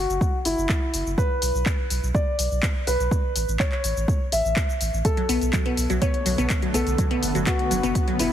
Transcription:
0.00 0.36 F#4 medium
0.09 0.18 F#1 medium
0.09 shaker soft
0.21 kick loud
0.21 shaker soft
0.45 0.54 F#1 medium
0.45 1.08 E4 medium
0.45 open hi-hat loud
0.45 shaker medium
0.58 0.66 F#1 medium
0.58 shaker soft
0.69 kick loud
0.69 clap loud
0.69 shaker soft
0.94 1.03 F#1 medium
0.94 open hi-hat loud
0.94 shaker medium
1.06 1.15 F#1 medium
1.06 shaker soft
1.18 2.05 B4 medium
1.18 kick loud
1.18 shaker soft
1.42 1.51 B1 medium
1.42 open hi-hat loud
1.42 shaker medium
1.54 1.63 B1 medium
1.54 shaker soft
1.66 kick loud
1.66 clap loud
1.66 shaker soft
1.90 1.99 B1 medium
1.90 open hi-hat loud
1.90 shaker medium
2.03 2.11 B1 medium
2.03 shaker soft
2.15 2.78 D5 medium
2.15 kick loud
2.15 shaker soft
2.39 2.48 B1 medium
2.39 open hi-hat loud
2.39 shaker medium
2.51 2.60 B1 medium
2.51 shaker soft
2.63 kick loud
2.63 clap loud
2.63 shaker soft
2.87 2.96 B1 medium
2.87 3.50 B4 medium
2.87 open hi-hat loud
2.87 shaker medium
3.00 3.08 B1 medium
3.00 shaker soft
3.11 kick loud
3.11 shaker soft
3.36 3.44 A1 medium
3.36 open hi-hat loud
3.36 shaker medium
3.48 3.56 A1 medium
3.48 shaker soft
3.60 4.23 C#5 medium
3.60 kick loud
3.60 clap loud
3.60 shaker soft
3.72 clap soft
3.84 3.93 A1 medium
3.84 open hi-hat loud
3.84 shaker medium
3.96 4.05 A1 medium
3.96 shaker soft
4.08 kick loud
4.08 shaker soft
4.32 4.41 A1 medium
4.32 4.96 E5 medium
4.32 open hi-hat loud
4.32 shaker medium
4.45 4.53 A1 medium
4.45 shaker soft
4.56 kick loud
4.56 clap loud
4.56 shaker soft
4.70 shaker soft
4.81 4.90 A1 medium
4.81 open hi-hat loud
4.81 shaker medium
4.93 5.02 A1 medium
4.93 shaker soft
5.05 6.97 D3 medium
5.05 6.97 A3 medium
5.05 8.33 B3 medium
5.05 5.92 A4 medium
5.05 kick loud
5.05 closed hi-hat medium
5.05 shaker soft
5.17 5.22 F#3 medium
5.17 closed hi-hat soft
5.29 5.38 B1 medium
5.29 5.36 B3 loud
5.29 open hi-hat loud
5.29 shaker medium
5.41 5.50 B1 medium
5.41 closed hi-hat soft
5.41 shaker soft
5.53 5.58 F#3 medium
5.53 kick loud
5.53 clap loud
5.53 closed hi-hat medium
5.53 shaker soft
5.66 5.72 B3 loud
5.66 closed hi-hat soft
5.77 5.86 B1 medium
5.77 open hi-hat loud
5.77 shaker medium
5.90 5.98 B1 medium
5.90 5.94 F#3 medium
5.90 closed hi-hat soft
5.90 shaker soft
6.02 6.09 B3 loud
6.02 6.65 C#5 medium
6.02 kick loud
6.02 closed hi-hat medium
6.02 shaker soft
6.14 closed hi-hat soft
6.26 6.35 B1 medium
6.26 6.30 F#3 medium
6.26 open hi-hat loud
6.26 shaker medium
6.38 6.47 B1 medium
6.38 6.45 B3 loud
6.38 closed hi-hat soft
6.38 shaker soft
6.50 kick loud
6.50 clap loud
6.50 closed hi-hat medium
6.50 shaker soft
6.62 6.67 F#3 medium
6.62 closed hi-hat soft
6.74 6.83 B1 medium
6.74 6.81 B3 loud
6.74 7.37 A4 medium
6.74 open hi-hat loud
6.74 shaker medium
6.87 6.95 B1 medium
6.87 closed hi-hat soft
6.87 shaker soft
6.98 8.33 C#3 medium
6.98 8.33 F#3 medium
6.98 7.03 F#3 medium
6.98 kick loud
6.98 closed hi-hat medium
6.98 shaker soft
7.11 7.17 B3 loud
7.11 closed hi-hat soft
7.23 7.32 F#1 medium
7.23 open hi-hat loud
7.23 shaker medium
7.35 7.43 F#1 medium
7.35 7.39 F#3 medium
7.35 closed hi-hat soft
7.35 shaker soft
7.47 7.54 B3 medium
7.47 8.10 F#4 medium
7.47 kick loud
7.47 clap loud
7.47 closed hi-hat medium
7.47 shaker soft
7.59 closed hi-hat soft
7.71 7.80 F#1 medium
7.71 7.76 F#3 medium
7.71 open hi-hat loud
7.71 shaker medium
7.83 7.92 F#1 medium
7.83 7.90 B3 loud
7.83 closed hi-hat soft
7.83 shaker soft
7.95 kick loud
7.95 closed hi-hat medium
7.95 shaker soft
8.08 8.12 F#3 medium
8.08 closed hi-hat soft
8.19 8.28 F#1 medium
8.19 8.26 B3 loud
8.19 8.33 E4 medium
8.19 open hi-hat loud
8.19 shaker medium

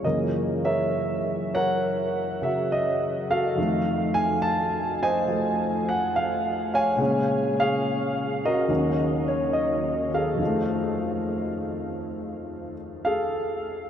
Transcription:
0.02 3.57 F#2 soft
0.02 2.40 C#3 soft
0.02 3.58 E3 soft
0.02 0.64 A#4 soft
0.02 0.18 D#5 medium
0.07 3.59 A#3 soft
0.65 1.54 A#4 medium
0.65 1.53 C#5 medium
0.65 1.57 E5 medium
1.54 3.27 A#4 medium
1.54 3.26 C#5 medium
1.54 2.45 F#5 medium
2.42 3.57 C#3 soft
2.42 3.59 F#3 soft
2.42 2.69 E5 medium
2.72 2.85 D#5 medium
3.30 4.98 F#4 medium
3.30 4.98 A4 medium
3.30 4.19 F5 medium
3.56 6.99 F2 medium
3.56 6.99 D#3 soft
3.61 5.29 A3 medium
4.14 4.44 G#5 medium
4.42 4.55 A5 medium
5.03 6.69 C5 medium
5.03 6.69 D#5 medium
5.03 5.83 G#5 medium
5.28 6.99 F3 soft
5.28 7.00 A3 soft
5.89 6.16 F#5 medium
6.16 6.29 F5 medium
6.74 7.58 C#5 medium
6.74 7.58 F5 medium
6.74 7.55 G#5 medium
6.97 8.68 A#2 medium
6.97 8.69 C#3 medium
6.97 8.69 G#3 medium
7.02 8.68 C#4 medium
7.59 8.66 G#4 medium
7.59 8.67 C#5 medium
7.59 8.40 F5 medium
8.45 10.10 F#4 medium
8.45 10.10 A#4 medium
8.45 9.31 D#5 medium
8.68 10.40 D#2 medium
8.68 10.37 D#3 soft
8.68 10.40 F#3 soft
8.68 10.41 C#4 medium
9.28 9.55 C#5 medium
9.53 10.08 D#5 medium
10.14 12.74 G#4 medium
10.14 12.74 A4 medium
10.14 12.74 F5 medium
10.35 13.90 F2 soft
10.35 13.90 D#3 soft
10.42 13.90 F3 soft
10.42 13.90 A3 medium
13.05 13.90 G#4 medium
13.05 13.90 A4 medium
13.05 13.90 F5 medium

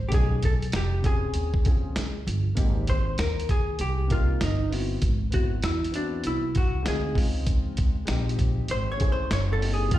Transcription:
0.00 0.10 G#1 medium
0.09 0.70 B1 loud
0.09 0.35 A3 medium
0.09 0.36 C#4 medium
0.09 0.36 D#4 medium
0.09 0.13 G4 medium
0.09 kick loud
0.09 closed hi-hat loud
0.14 0.37 G#4 medium
0.14 0.45 G#4 medium
0.42 0.53 A4 medium
0.42 kick medium
0.42 closed hi-hat medium
0.62 closed hi-hat medium
0.72 1.22 F1 medium
0.72 snare loud
0.72 closed hi-hat medium
0.76 1.06 G4 medium
1.02 1.49 C4 medium
1.02 1.50 C#4 medium
1.02 1.51 F4 medium
1.02 1.51 G#4 medium
1.02 kick medium
1.02 closed hi-hat medium
1.06 2.23 G#4 medium
1.24 muted upright bass stroke soft
1.34 1.93 D#2 medium
1.34 closed hi-hat medium
1.54 kick medium
1.63 2.03 C4 medium
1.63 2.03 C#4 medium
1.63 2.04 F4 medium
1.63 2.05 G#4 medium
1.63 kick medium
1.63 closed hi-hat medium
1.96 2.25 C#2 medium
1.96 snare loud
1.96 closed hi-hat medium
2.27 2.56 G1 medium
2.27 closed hi-hat medium
2.55 3.15 G#1 loud
2.55 2.80 A#3 medium
2.55 2.81 C4 medium
2.55 2.81 D#4 medium
2.55 2.82 G4 medium
2.55 kick loud
2.55 closed hi-hat medium
2.87 3.20 C5 medium
2.87 kick medium
2.87 closed hi-hat medium
3.18 3.76 D#2 medium
3.18 3.50 A#4 medium
3.18 snare loud
3.18 closed hi-hat medium
3.40 closed hi-hat soft
3.49 3.81 G#4 medium
3.49 kick medium
3.49 closed hi-hat medium
3.79 4.38 C2 medium
3.79 4.12 G4 medium
3.79 closed hi-hat medium
4.08 4.55 A#3 medium
4.08 4.56 C4 medium
4.08 4.57 D#4 medium
4.08 4.57 A#4 medium
4.08 kick medium
4.08 closed hi-hat medium
4.12 4.43 F4 medium
4.41 4.99 G1 medium
4.41 4.71 D#4 medium
4.41 snare loud
4.41 closed hi-hat medium
4.69 4.94 B3 medium
4.69 4.95 C4 medium
4.69 4.96 E4 medium
4.69 4.96 F#4 medium
4.69 open hi-hat medium
5.02 5.60 G#1 loud
5.02 kick loud
5.02 closed hi-hat medium
5.30 5.56 B3 medium
5.30 5.56 C4 medium
5.30 5.57 E4 medium
5.30 5.64 F#4 medium
5.30 5.58 F#4 medium
5.30 kick medium
5.30 closed hi-hat medium
5.62 6.21 E2 medium
5.62 5.95 E4 medium
5.62 snare loud
5.62 closed hi-hat medium
5.84 closed hi-hat soft
5.92 6.39 B3 medium
5.92 6.40 C4 medium
5.92 6.26 D4 medium
5.92 6.41 E4 medium
5.92 6.41 F#4 medium
5.92 closed hi-hat medium
6.24 6.83 C2 medium
6.24 6.57 E4 medium
6.24 closed hi-hat medium
6.55 6.88 F#4 medium
6.55 kick medium
6.55 closed hi-hat medium
6.83 7.15 D2 medium
6.83 7.12 G#3 medium
6.83 7.14 C4 medium
6.83 7.15 D#4 medium
6.83 7.16 F4 medium
6.83 snare loud
6.83 closed hi-hat medium
6.88 7.15 G#4 medium
7.14 8.04 C#2 loud
7.14 7.92 G#3 medium
7.14 7.93 C4 medium
7.14 7.93 D#4 medium
7.14 7.94 F4 medium
7.14 kick medium
7.14 open hi-hat medium
7.47 kick loud
7.47 closed hi-hat loud
7.77 kick medium
7.77 closed hi-hat medium
8.05 8.56 A#1 medium
8.05 8.94 G#3 medium
8.05 8.95 C4 medium
8.05 8.95 D#4 medium
8.05 8.96 G4 medium
8.05 snare loud
8.05 closed hi-hat medium
8.29 closed hi-hat soft
8.39 kick medium
8.39 closed hi-hat medium
8.59 muted upright bass stroke soft
8.68 9.27 G#1 medium
8.68 8.91 C5 loud
8.68 closed hi-hat medium
8.92 9.11 C#5 loud
8.97 9.23 A3 medium
8.97 9.24 C#4 medium
8.97 9.24 E4 medium
8.97 9.25 G#4 medium
8.97 kick medium
8.97 closed hi-hat medium
9.12 9.32 C5 loud
9.31 9.92 F#1 loud
9.31 9.38 C#5 loud
9.31 snare loud
9.31 closed hi-hat medium
9.53 9.73 A4 medium
9.58 9.87 A#3 medium
9.58 9.89 C4 medium
9.58 9.90 D#4 medium
9.58 9.99 G4 medium
9.58 open hi-hat medium
9.74 9.91 G#4 medium
9.89 9.99 G#1 loud
9.89 9.99 A#3 medium
9.89 9.99 C4 medium
9.89 9.99 D#4 medium
9.89 9.99 G5 medium
9.89 kick loud
9.89 closed hi-hat medium
9.94 9.99 F4 medium

